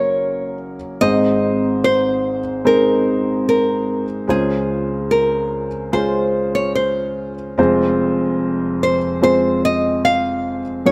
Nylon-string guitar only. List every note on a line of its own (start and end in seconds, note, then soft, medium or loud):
0.00 0.57 C#5 medium
1.01 1.84 D#5 medium
1.84 2.66 C5 medium
2.67 3.47 A#4 medium
3.49 4.05 A#4 medium
4.30 5.14 G#4 medium
5.11 5.93 A#4 medium
5.93 6.54 C5 medium
6.55 6.75 C#5 medium
6.75 7.34 C5 medium
8.83 9.22 C5 medium
9.23 9.65 C5 medium
9.65 10.04 D#5 medium
10.05 10.62 F5 medium
10.86 10.92 C#5 medium